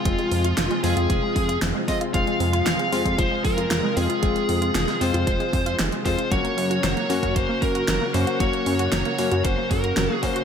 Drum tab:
HH |xxoxxxoxx-oxx-ox|xxoxxxoxx-oxx-ox|xxoxxxoxxxoxxxox|xxoxxxoxx-oxx-ox|
SD |----o-------o---|----o-------o---|----oo------o---|----o-------o---|
BD |o-------o-o---o-|o------oo-o-----|o-------o-o---o-|o------oo-o-----|

HH |xxoxxxoxx-oxx-ox|
SD |----o-------o---|
BD |o-------o-o---o-|